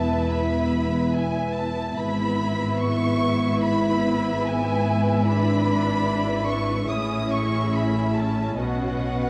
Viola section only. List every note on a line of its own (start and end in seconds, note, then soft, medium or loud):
0.00 1.94 B3 soft
0.00 1.94 E4 soft
1.98 5.23 B3 medium
1.98 6.86 E4 medium
5.27 6.90 D4 medium
6.90 9.30 C#4 soft
6.90 8.56 E4 medium
8.59 9.30 F#4 soft